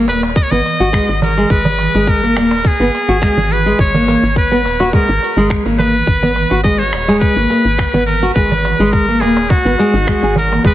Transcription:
0.08 fm bass D#1, nylon-string guitar A#3, muted trumpet B4, darbuka ka, darbuka tek, shaker
0.23 darbuka tek, shaker
0.36 muted trumpet D#5, kick, darbuka ka, shaker
0.43 muted trumpet C#5
0.51 fm bass G#1, nylon-string guitar B3, muted trumpet D#5, darbuka dum, shaker
0.66 darbuka ka, shaker
0.80 fm bass G#1, nylon-string guitar F#4, shaker
0.93 nylon-string guitar G#3, finger snap, kick, shaker
1.09 fm bass G#1, darbuka ka, shaker
1.22 muted trumpet A#4, darbuka dum, shaker
1.37 nylon-string guitar G#3, shaker
1.50 fm bass G#1, nylon-string guitar G#3, muted trumpet B4, kick, shaker
1.65 darbuka dum, shaker
1.79 darbuka tek, shaker
1.95 fm bass G#1, nylon-string guitar G#3, darbuka ka, shaker
2.07 muted trumpet A#4, kick, shaker
2.23 nylon-string guitar A#3, shaker
2.36 fm bass D#1, nylon-string guitar A#3, finger snap, darbuka ka, darbuka tek, shaker
2.51 darbuka tek, shaker
2.65 muted trumpet G#4, kick, shaker
2.80 fm bass G#1, nylon-string guitar B3, shaker
2.95 darbuka ka, shaker
3.08 fm bass G#1, nylon-string guitar F#4, shaker
3.22 nylon-string guitar G#3, finger snap, kick, shaker
3.37 fm bass G#1, darbuka dum, shaker
3.51 muted trumpet B4, darbuka ka, shaker
3.66 nylon-string guitar G#3, shaker
3.79 fm bass G#1, muted trumpet C#5, kick, shaker
3.94 nylon-string guitar A#3, darbuka dum, shaker
4.08 nylon-string guitar A#3, darbuka tek, shaker
4.23 fm bass G#1, darbuka ka, shaker
4.36 muted trumpet B4, kick, shaker
4.52 nylon-string guitar B3, shaker
4.65 fm bass D#1, darbuka ka, darbuka tek, shaker
4.80 nylon-string guitar F#4, darbuka tek, shaker
4.93 nylon-string guitar G#3, muted trumpet A#4, kick, darbuka ka, shaker
5.09 fm bass G#1, shaker
5.22 darbuka ka, shaker
5.37 fm bass G#1, nylon-string guitar G#3, shaker
5.50 finger snap, kick, shaker
5.66 fm bass G#1, nylon-string guitar A#3, darbuka ka, shaker
5.79 nylon-string guitar A#3, muted trumpet B4, darbuka dum, shaker
5.96 shaker
6.07 fm bass G#1, kick, shaker
6.23 nylon-string guitar B3, darbuka dum, shaker
6.36 darbuka tek, shaker
6.50 fm bass G#1, nylon-string guitar F#4, darbuka ka, shaker
6.63 nylon-string guitar G#3, muted trumpet D#5, kick, shaker
6.78 muted trumpet C#5, shaker
6.93 fm bass D#1, finger snap, darbuka ka, darbuka tek, shaker
7.08 nylon-string guitar G#3, darbuka tek, shaker
7.20 muted trumpet B4, kick, shaker
7.36 fm bass G#1, nylon-string guitar A#3, shaker
7.50 nylon-string guitar A#3, darbuka ka, shaker
7.65 fm bass G#1, shaker
7.79 finger snap, kick, shaker
7.94 fm bass G#1, nylon-string guitar B3, darbuka dum, shaker
8.06 muted trumpet A#4, darbuka ka, shaker
8.23 nylon-string guitar F#4, shaker
8.34 fm bass G#1, nylon-string guitar G#3, muted trumpet B4, kick, shaker
8.52 darbuka dum, shaker
8.65 darbuka tek, shaker
8.79 fm bass G#1, nylon-string guitar G#3, darbuka ka, shaker
8.92 muted trumpet A#4, kick, shaker
9.09 nylon-string guitar A#3, shaker
9.20 fm bass D#1, nylon-string guitar A#3, muted trumpet G#4, darbuka ka, darbuka tek, shaker
9.37 darbuka tek, shaker
9.49 muted trumpet F#4, kick, darbuka ka, shaker
9.65 fm bass G#1, nylon-string guitar B3, shaker
9.79 nylon-string guitar G#3, darbuka ka, shaker
9.94 fm bass G#1, nylon-string guitar D#4, shaker
10.07 nylon-string guitar G#3, finger snap, kick, shaker
10.22 fm bass G#1, nylon-string guitar G#4, darbuka ka, darbuka tek, shaker
10.36 muted trumpet A#4, darbuka dum, shaker
10.52 nylon-string guitar A#3, darbuka tek, shaker
10.64 fm bass G#1, nylon-string guitar G#3, muted trumpet B4, kick, shaker

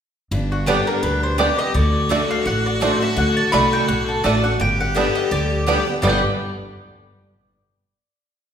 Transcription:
0.31 upright bass G1, steel-string acoustic guitar G2, fiddle D4
0.52 mandolin F#4
0.66 steel-string acoustic guitar D3 G3 B3 G4, five-string banjo G3 B3 D4, mandolin B3 G4 D5 G5
0.87 mandolin A#4
1.03 upright bass D2, steel-string acoustic guitar B2, mandolin B4
1.23 mandolin C5
1.38 steel-string acoustic guitar C3, five-string banjo G3 B3 D4, mandolin B3 G4 D5 G5, fiddle G4
1.59 mandolin D#5
1.74 upright bass D2, steel-string acoustic guitar D3, fiddle F#4, mandolin D5
2.09 steel-string acoustic guitar D3 A3 D4 F#4, mandolin A3 F#4 D5 A5, five-string banjo A3 D4
2.31 mandolin F5
2.46 upright bass A1, steel-string acoustic guitar A2, mandolin F#5
2.66 mandolin D5
2.80 steel-string acoustic guitar D3 A3 D4 F#4, mandolin A3 F#4 C5 D5 A5, five-string banjo A3 D4
3.00 steel-string acoustic guitar D4 F#4, mandolin E5
3.16 upright bass D2, steel-string acoustic guitar D3, mandolin F#5
3.37 mandolin A5
3.52 upright bass C2, steel-string acoustic guitar D3 A3 D4 F#4, mandolin A3 F#4 D5 A5 B5, five-string banjo A3 D4
3.73 mandolin G5
3.88 upright bass B1, steel-string acoustic guitar A2, mandolin F#5
4.08 mandolin A4
4.24 upright bass A1, steel-string acoustic guitar D3 A3 D4 F#4, mandolin A3 F#4 D5 A5, five-string banjo A3 D4
4.43 steel-string acoustic guitar D4 F#4, mandolin F#5
4.60 upright bass G1, steel-string acoustic guitar G2, fiddle G4, mandolin G5
4.81 mandolin F#5
4.95 steel-string acoustic guitar D3 G3 B3 G4, five-string banjo G3 B3 D4, mandolin B3 G4 D5 E5 G5
5.15 mandolin D#5
5.31 upright bass D2, steel-string acoustic guitar D3, mandolin D5
5.66 steel-string acoustic guitar D3 G3 B3 G4, five-string banjo G3 B3 D4, mandolin B3 G4 D5 G5, fiddle G4
5.86 steel-string acoustic guitar B3 G4
6.02 upright bass G1, steel-string acoustic guitar G2 B2 D3 G3 B3 G4, five-string banjo G3 B3, mandolin B3 G4 D5 G5, fiddle B4
6.07 five-string banjo D4 G4

